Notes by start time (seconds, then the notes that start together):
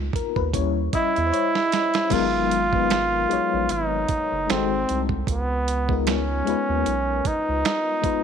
Already playing: C#2 A#3 B3 D#4 F4
0.13 D#2 A#4, kick, closed hi-hat
0.36 D#2 B4, kick
0.53 D#2 G3 C#4 E4 C#5, kick, closed hi-hat
0.93 E4 D#5, kick, closed hi-hat
1.16 E2 E5, closed hi-hat
1.26 C5
1.32 C#5, closed hi-hat
1.55 snare
1.72 snare, closed hi-hat
1.94 snare, closed hi-hat
2.10 G#1 F#3 G#3 B3 D#4 F4, kick, closed hi-hat, crash
2.14 A#4
2.51 closed hi-hat
2.71 F#3 G#3 B3 D#4 B4, kick
2.90 finger snap, snare, closed hi-hat
3.29 A#1 F#3 G#3 B3 D#4, closed hi-hat
3.33 C#5
3.54 A#1
3.69 G#1 D#4, closed hi-hat
4.08 kick, closed hi-hat
4.32 F#1
4.47 G#1 G#3 C4 D#4 F#4, finger snap, snare, closed hi-hat
4.51 A4
4.89 C2, closed hi-hat
5.09 kick
5.27 C#2 B3, kick, closed hi-hat
5.68 closed hi-hat
5.89 G#3 B3 D#4 F4 A#4, kick
6.07 C#4, finger snap, snare, closed hi-hat
6.45 D#2 G#3 B3 D#4 F4, closed hi-hat
6.49 B4
6.69 D#2
6.86 B1, closed hi-hat
7.25 D#4, kick, closed hi-hat
7.49 C#2
7.65 finger snap, snare, closed hi-hat
8.02 G#3 B3 D#4 F4, kick, closed hi-hat
8.06 B4